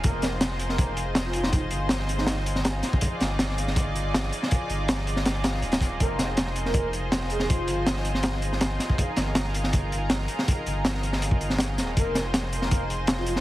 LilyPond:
<<
  \new Staff \with { instrumentName = "Analog synth pad" } { \time 4/4 \key f \dorian \tempo 4 = 161 << { c''1~ | c''1 | d''1~ | d''1 |
c''1~ | c''1 | bes'1~ | bes'1 |
c''1 | } \\ { <ees' f' aes'>1~ | <ees' f' aes'>1~ | <ees' f' aes'>1~ | <ees' f' aes'>1~ |
<ees' f' aes'>1~ | <ees' f' aes'>1~ | <ees' f' aes'>1~ | <ees' f' aes'>1~ |
<ees' f' aes'>1 | } >> }
  \new Staff \with { instrumentName = "Soft synth lead" } { \time 4/4 \key f \dorian bes'8 r4 r16 bes'8 r4 f'16 f'16 ees'16 | ees'16 r4. ees'16 ees'16 r4. r16 | r1 | r1 |
bes'8 r4 r16 bes'8 r4 r16 aes'16 aes'16 | f'4 r2. | r1 | r1 |
bes'8 r4 r16 bes'8 r4 f'16 f'16 ees'16 | }
  \new Staff \with { instrumentName = "Sub bass" } { \clef bass \time 4/4 \key f \dorian f,,1~ | f,,8 g,,2. r8 | r8 g,,2. r8 | r8 g,,2~ g,,8 ees,,4 |
f,,1~ | f,,8 g,,2. r8 | r8 g,,2. r8 | r8 g,,2. ees,,8 |
f,,1 | }
  \new DrumStaff \with { instrumentName = "Drums" } \drummode { \time 4/4 <hh bd>8 <hh sn>8 <hh sn>16 sn16 hh16 sn16 <hh bd>8 hh8 <hh sn>16 sn16 hh16 sn16 | <hh bd>8 hh8 <hh sn>16 sn16 hh16 sn16 <hh sn>16 sn16 hh16 sn16 <hh sn>8 <hh sn>16 bd16 | <hh bd>8 <hh sn>8 <hh sn>16 sn16 hh16 sn16 <hh bd>8 hh8 <hh sn>16 sn16 hh16 sn16 | <hh bd>8 hh8 <hh sn>16 sn16 hh16 sn16 <hh sn>16 sn16 <hh sn>16 sn16 hh16 <hh sn>16 <hh bd>8 |
<hh bd>8 <hh sn>8 <hh sn>16 sn16 hh16 sn16 <hh bd>8 hh8 <hh sn>16 sn16 hh16 sn16 | <hh bd>8 hh8 <hh sn>16 sn16 hh16 sn16 <hh sn>16 sn16 hh16 sn16 <hh sn>8 <hh sn>16 bd16 | <hh bd>8 <hh sn>8 <hh sn>16 sn16 hh16 sn16 <hh bd>8 hh8 <hh sn>16 sn16 hh16 sn16 | <hh bd>8 hh8 <hh sn>16 sn16 hh16 sn16 hh16 bd16 hh16 sn16 <hh sn>8 <hh sn>8 |
<hh bd>8 <hh sn>8 <hh sn>16 sn16 hh16 sn16 <hh bd>8 hh8 <hh sn>16 sn16 hh16 sn16 | }
>>